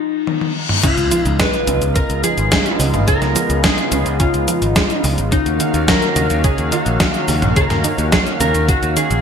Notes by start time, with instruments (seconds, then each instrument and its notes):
Already playing: lead electric guitar D#4, reverse cymbal
0.27 high tom
0.41 high tom
0.69 mid tom
0.83 synth arpeggio sound C#3, analog synth pad C#3 G#3 B3 D#4 F4, lead electric guitar F4, kick, closed hi-hat, crash, impact, shaker
0.97 picked electric bass C#2, closed hi-hat, shaker
1.11 synth arpeggio sound F3, closed hi-hat, shaker
1.26 picked electric bass C#2, lead electric guitar D#4, closed hi-hat, shaker
1.39 synth arpeggio sound G#3, lead electric guitar B4, kick, snare, closed hi-hat, shaker
1.53 closed hi-hat, shaker
1.67 picked electric bass C#2, synth arpeggio sound C#3, closed hi-hat, shaker
1.82 picked electric bass C#2, closed hi-hat, shaker
1.96 synth arpeggio sound C#3, lead electric guitar A#4, kick, closed hi-hat, shaker
2.10 picked electric bass C#2, closed hi-hat, shaker
2.24 synth arpeggio sound F3, lead electric guitar G#4, closed hi-hat, shaker
2.38 picked electric bass G#1, closed hi-hat, shaker
2.52 synth arpeggio sound G#3, kick, snare, closed hi-hat, shaker
2.66 closed hi-hat, shaker
2.80 picked electric bass C#2, synth arpeggio sound C#3, open hi-hat, shaker
2.94 picked electric bass G#1, closed hi-hat, mid tom, shaker
3.08 synth arpeggio sound C#3, lead electric guitar A#4, kick, closed hi-hat, shaker
3.22 picked electric bass C#2, snare, closed hi-hat, shaker
3.36 synth arpeggio sound F3, closed hi-hat, shaker
3.50 picked electric bass C#2, closed hi-hat, shaker
3.64 synth arpeggio sound G#3, lead electric guitar G#4, kick, snare, closed hi-hat, shaker
3.78 closed hi-hat, shaker
3.92 picked electric bass C#2, synth arpeggio sound C#3, closed hi-hat, shaker
4.06 picked electric bass C#2, closed hi-hat, shaker
4.20 synth arpeggio sound C#3, lead electric guitar F4, kick, closed hi-hat, shaker
4.34 picked electric bass C#2, closed hi-hat, shaker
4.48 synth arpeggio sound F3, closed hi-hat, shaker
4.62 picked electric bass G#1, closed hi-hat, shaker
4.76 synth arpeggio sound G#3, kick, snare, closed hi-hat, shaker
4.90 closed hi-hat, shaker
5.04 picked electric bass C#2, synth arpeggio sound C#3, open hi-hat, shaker
5.18 picked electric bass G#1, closed hi-hat, shaker
5.32 synth arpeggio sound C#3, analog synth pad D#3 A#3 C#4 F#4 F5, lead electric guitar D#4, kick, closed hi-hat, shaker
5.46 picked electric bass D#2, closed hi-hat, shaker
5.60 synth arpeggio sound D#3, closed hi-hat, shaker
5.74 picked electric bass D#2, closed hi-hat, shaker
5.88 synth arpeggio sound F#3, lead electric guitar A#4, kick, snare, closed hi-hat, shaker
6.02 closed hi-hat, shaker
6.16 picked electric bass D#2, synth arpeggio sound C#3, closed hi-hat, shaker
6.30 picked electric bass D#2, closed hi-hat, shaker
6.44 synth arpeggio sound C#3, lead electric guitar G#4, kick, closed hi-hat, shaker
6.58 picked electric bass D#2, closed hi-hat, shaker
6.72 synth arpeggio sound D#3, lead electric guitar F#4, closed hi-hat, shaker
6.86 picked electric bass A#1, closed hi-hat, shaker
7.00 synth arpeggio sound F#3, kick, snare, closed hi-hat, shaker
7.14 closed hi-hat, shaker
7.28 picked electric bass D#2, synth arpeggio sound C#3, open hi-hat, shaker
7.42 picked electric bass A#1, closed hi-hat, mid tom, shaker
7.56 synth arpeggio sound C#3, lead electric guitar A#4, kick, closed hi-hat, shaker
7.70 picked electric bass D#2, snare, closed hi-hat, mid tom, shaker
7.84 synth arpeggio sound D#3, closed hi-hat, shaker
7.98 picked electric bass D#2, closed hi-hat, shaker
8.12 synth arpeggio sound F#3, lead electric guitar G#4, kick, snare, closed hi-hat, shaker
8.26 closed hi-hat, shaker
8.40 picked electric bass D#2, synth arpeggio sound C#3, lead electric guitar A#4, closed hi-hat, shaker
8.55 picked electric bass D#2, closed hi-hat, shaker
8.68 synth arpeggio sound C#3, lead electric guitar F#4, kick, closed hi-hat, shaker
8.82 picked electric bass D#2, closed hi-hat, shaker
8.97 synth arpeggio sound D#3, lead electric guitar G#4, closed hi-hat, shaker
9.11 picked electric bass A#1, closed hi-hat, shaker